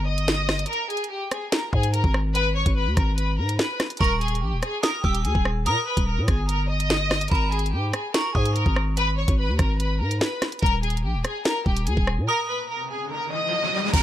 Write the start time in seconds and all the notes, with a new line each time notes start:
Already playing: G1
0.08 D#5 D#6
0.18 closed hi-hat
0.28 snare
0.49 cross-stick, snare, open hi-hat
0.59 closed hi-hat
0.66 A#4 A#5, closed hi-hat
0.73 closed hi-hat
0.90 G#4 G#5, closed hi-hat
0.97 closed hi-hat
1.04 closed hi-hat
1.11 G4 G5
1.31 G#4 G#5, cross-stick, closed hi-hat
1.52 A#4 A#5, snare, closed hi-hat
1.73 G#2 G#4 G#5, kick
1.83 closed hi-hat
1.94 A#4 A#5, closed hi-hat
2.04 G#1, kick
2.14 cross-stick
2.35 B4 B5, closed hi-hat
2.56 C#5 C#6
2.66 G#1, kick, closed hi-hat
2.77 B4 B5
2.87 D#2
2.97 G#1 A#4 A#5, kick, cross-stick, closed hi-hat
3.18 B4 B5, closed hi-hat
3.38 G#2 A#4 A#5
3.49 closed hi-hat
3.59 B4 B5, snare
3.80 cross-stick, snare, closed hi-hat
3.90 closed hi-hat
3.97 D#1 A#4 A#5 C#6, kick, closed hi-hat
4.04 closed hi-hat
4.21 G#4 G#5, closed hi-hat
4.28 closed hi-hat
4.35 closed hi-hat
4.42 A#1 G4 G5
4.52 D#1
4.63 G#4 G#5, cross-stick, closed hi-hat
4.83 A#4 A#5 D#6, snare, closed hi-hat
5.04 D#1 G4 G5 E6, kick
5.15 closed hi-hat
5.25 D#2 G#4 G#5, closed hi-hat
5.35 D#1, kick
5.45 cross-stick
5.66 A#2 A#4 A#5 D#6, closed hi-hat
5.87 B4 B5
5.97 D#1, kick, closed hi-hat
6.07 A#4 A#5
6.18 A#2
6.28 G1 G#4 G#5, kick, cross-stick, closed hi-hat
6.49 A#4 A#5, closed hi-hat
6.70 D#5 D#6
6.80 closed hi-hat
6.90 snare
7.11 cross-stick, snare, open hi-hat
7.21 closed hi-hat
7.28 G#1 A#4 A#5 B5, kick, closed hi-hat
7.35 closed hi-hat
7.52 G#4 G#5, closed hi-hat
7.59 closed hi-hat
7.66 closed hi-hat
7.73 G#2 G4 G5
7.93 G#4 G#5, cross-stick, closed hi-hat
8.14 A#4 A#5 C#6, snare, closed hi-hat
8.35 G#2 G#4 G#5 D#6, kick
8.46 closed hi-hat
8.56 A#4 A#5, closed hi-hat
8.66 G#1, kick
8.76 cross-stick
8.97 B4 B5, closed hi-hat
9.18 C#5 C#6
9.28 G#1, kick, closed hi-hat
9.39 B4 B5
9.49 D#2
9.59 G#1 A#4 A#5, kick, cross-stick, closed hi-hat
9.80 B4 B5, closed hi-hat
10.01 G#2 A#4 A#5
10.11 closed hi-hat
10.21 B4 B5, snare
10.42 cross-stick, snare, closed hi-hat
10.52 closed hi-hat
10.59 D#1 A#4 A#5, kick, closed hi-hat
10.66 closed hi-hat
10.83 G#4 G#5, closed hi-hat
10.90 closed hi-hat
10.97 closed hi-hat
11.04 A#1 G4 G5
11.14 D#1
11.24 G#4 G#5, cross-stick, closed hi-hat
11.45 A#4 A#5, snare, closed hi-hat
11.66 D#1 G4 G5, kick
11.77 closed hi-hat
11.87 D#2 G#4 G#5, closed hi-hat
11.97 D#1, kick
12.07 cross-stick
12.18 A#2
12.28 A#4 A#5 D#6, riser
12.49 B4 B5
12.69 A#4 A#5
12.90 G#4 G#5
13.11 A#4 A#5
13.32 D#5 D#6
13.93 G#1 A#4 A#5, kick, closed hi-hat, downlifter